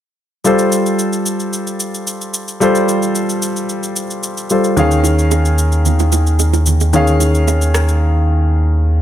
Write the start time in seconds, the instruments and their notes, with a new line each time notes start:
0.44 grand piano G3 F4 A4 C5, shaker
0.59 shaker
0.72 shaker
0.86 shaker
0.99 shaker
1.13 shaker
1.26 shaker
1.40 shaker
1.53 shaker
1.67 shaker
1.80 shaker
1.94 shaker
2.07 shaker
2.21 shaker
2.34 shaker
2.48 shaker
2.60 grand piano G3 F4 A4 C5, shaker
2.75 shaker
2.88 shaker
3.02 shaker
3.15 shaker
3.29 shaker
3.42 shaker
3.56 shaker
3.69 shaker
3.83 shaker
3.96 shaker
4.10 shaker
4.23 shaker
4.37 shaker
4.50 grand piano G3 F4 A4 C5, shaker
4.64 shaker
4.77 sub bass D#2, grand piano D#3 C#4 G#4 F5, low conga, shaker
4.91 shaker
5.04 low bongo, shaker
5.19 shaker
5.31 high bongo, shaker
5.45 shaker
5.58 shaker
5.72 shaker
5.85 low conga, shaker
5.99 low bongo, shaker
6.12 low bongo, shaker
6.27 shaker
6.39 high bongo, shaker
6.53 low bongo, shaker
6.66 low conga, shaker
6.80 high bongo, shaker
6.93 grand piano D#3 C#4 G#4 F5, low conga, shaker
7.07 shaker
7.20 low bongo, shaker
7.35 shaker
7.48 high bongo, shaker
7.61 shaker
7.74 cross-stick, shaker
7.89 shaker